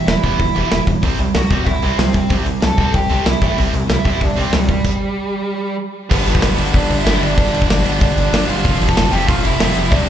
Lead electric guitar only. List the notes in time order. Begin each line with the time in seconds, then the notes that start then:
0.06 E4 E5
1.35 F#4 F#5
1.65 E4 E5
1.98 C4 C5
2.14 C4 C5
2.64 A4 A5
2.95 G4 G5
3.27 E4 E5
3.43 E4 E5
3.91 E4 E5
4.23 D4 D5
4.37 C4 C5
4.53 G3 G4
6.11 B3 B4
6.74 D4 D5
6.98 E4 E5
7.21 D4 D5
7.67 D4 D5
8.00 D4 D5
8.48 F4 F5
8.87 A4 A5
9.11 G4 G5
9.27 F4 F5
9.43 E4 E5
9.91 D4 D5